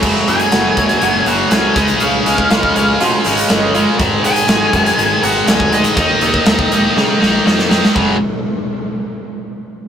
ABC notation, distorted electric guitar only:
X:1
M:4/4
L:1/8
Q:1/4=121
K:F#
V:1 name="Distorted electric guitar" clef=bass
[F,,C,F,] [F,,C,F,] [F,,C,F,] [F,,C,F,] [F,,C,F,] [F,,C,F,] [F,,C,F,] [C,G,C] | [C,G,C] [C,G,C] [C,G,C] [C,G,C] [C,G,C] [C,G,C] [C,G,C] [C,G,C] | [G,,D,G,] [G,,D,G,] [G,,D,G,] [G,,D,G,] [G,,D,G,] [G,,D,G,] [G,,D,G,] [G,,D,G,] | [D,A,D] [D,A,D] [D,A,D] [D,A,D] [D,A,D] [D,A,D] [D,A,D] [D,A,D] |
[F,,C,F,] z6 z |]